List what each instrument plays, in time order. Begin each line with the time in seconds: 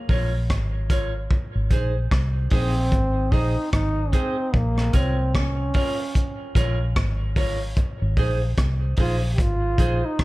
Already playing: trombone A#3
0.09 fingered electric bass A#1, clean electric guitar F4 A#4 C#5, kick, open hi-hat
0.50 kick, cross-stick, hi-hat pedal
0.90 clean electric guitar F4 A#4 C#5, kick, closed hi-hat
1.31 kick
1.55 fingered electric bass G#1
1.70 fingered electric bass A#1, clean electric guitar D#4 G#4 C5, kick, closed hi-hat
2.11 fingered electric bass C2, kick, cross-stick
2.50 fingered electric bass A#1, trombone C4, clean electric guitar D#4 G#4 C5, kick, open hi-hat
2.76 muted clean electric guitar stroke
2.92 fingered electric bass G#1, kick, hi-hat pedal
3.32 fingered electric bass A#1, clean electric guitar D#4 G#4 C5, trombone D#4, kick, open hi-hat
3.73 fingered electric bass G#1, trombone D#4, kick, cross-stick, hi-hat pedal
4.12 trombone C4, clean electric guitar D#4 G#4 C5, kick, closed hi-hat
4.54 fingered electric bass A#1, trombone A#3, kick
4.78 cross-stick
4.93 fingered electric bass C2, trombone C4, clean electric guitar F4 A#4 C#5, kick, closed hi-hat
5.35 trombone C#4, kick, cross-stick
5.74 clean electric guitar F4 A#4 C#5, kick, open hi-hat
5.99 muted clean electric guitar stroke
6.15 kick, hi-hat pedal
6.55 fingered electric bass A#1, clean electric guitar F4 A#4 C#5, kick, closed hi-hat
6.96 fingered electric bass G#1, kick, cross-stick
7.36 clean electric guitar F4 A#4 C#5, kick, open hi-hat
7.76 kick, hi-hat pedal
8.02 fingered electric bass G#1
8.17 fingered electric bass A#1, clean electric guitar D#4 G#4 C5, kick, open hi-hat
8.57 fingered electric bass C2, kick, cross-stick, hi-hat pedal
8.97 fingered electric bass A#1, clean electric guitar D#4 G#4 C5, kick, open hi-hat
9.01 trombone F4
9.21 muted clean electric guitar stroke
9.35 trombone G4, kick, hi-hat pedal
9.39 fingered electric bass G#1, trombone F4
9.78 fingered electric bass A#1, clean electric guitar D#4 G#4 C5, kick, closed hi-hat
10.05 trombone D#4
10.19 fingered electric bass G#1, kick, cross-stick